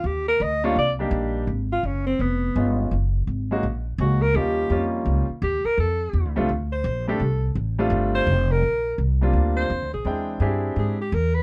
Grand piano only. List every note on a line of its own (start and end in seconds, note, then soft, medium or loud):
0.64 0.75 G3 medium
0.64 0.75 A#3 medium
0.64 0.75 D4 medium
0.64 0.76 D#4 medium
0.64 0.76 F4 loud
0.99 1.45 G3 medium
0.99 1.46 A#3 medium
0.99 1.46 D4 medium
0.99 1.46 D#4 medium
0.99 1.46 G4 medium
2.56 2.91 G#3 medium
2.56 2.92 B3 medium
2.56 2.92 C#4 medium
2.56 2.92 D#4 medium
2.56 2.92 F4 medium
3.51 3.62 G#3 medium
3.51 3.62 A#3 medium
3.51 3.62 C#4 medium
3.51 3.63 D#4 medium
3.51 3.63 F#4 medium
4.00 4.20 G#3 soft
4.00 4.20 A#3 soft
4.00 4.20 C#4 soft
4.00 4.20 D#4 soft
4.00 4.21 F#4 medium
4.35 4.69 G3 medium
4.35 4.69 A#3 medium
4.35 4.70 C#4 medium
4.35 4.70 D#4 medium
4.35 4.70 F4 medium
4.70 5.24 G3 medium
4.70 5.25 A#3 medium
4.70 5.25 C#4 medium
4.70 5.25 D#4 medium
4.70 5.25 F4 medium
6.36 6.47 G3 medium
6.36 6.48 A3 medium
6.36 6.48 C4 medium
6.36 6.48 D4 medium
6.36 6.48 F4 medium
7.08 7.19 G3 medium
7.08 7.19 A3 medium
7.08 7.19 C4 medium
7.08 7.19 D4 medium
7.08 7.20 G4 medium
7.79 8.25 G3 medium
7.79 8.25 A3 medium
7.79 8.25 C4 medium
7.79 8.25 D4 medium
7.79 8.25 F4 medium
9.21 9.67 G3 medium
9.21 9.68 A#3 medium
9.21 9.68 C4 medium
9.21 9.68 D4 medium
9.21 9.68 F4 medium
10.05 10.40 G#3 medium
10.05 10.40 C4 medium
10.05 10.40 D4 medium
10.05 10.40 E4 medium
10.05 10.41 G5 medium
10.41 10.95 C4 medium
10.41 10.96 D4 medium
10.41 10.96 E4 medium
10.41 10.96 G4 medium
10.41 10.95 G#4 medium